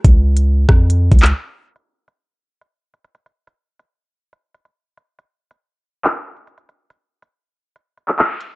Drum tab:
HH |x--------x--------------x-----x-x-x-------------|x--------x--------------x--------x--x--x--x-----|x--------x--------------x-----x--x--------x-----|x--------x--------------x--------x--x--x--x-----|
CP |---------------------------------x--------------|------------------------------------------------|------------------------------------------------|------------------------x-----------------------|
SD |------------------r-----------------------------|------------------------------------------------|------------------------------------------------|------------------------------------------------|
BD |o-----------------o-----------o-----------------|------------------------------------------------|------------------------------------------------|------------------------------------------------|

HH |x--------x--------------x-----x--x--------x-----|
CP |---------------------------------x--x-----------|
SD |------------------------------------------------|
BD |------------------------------------------------|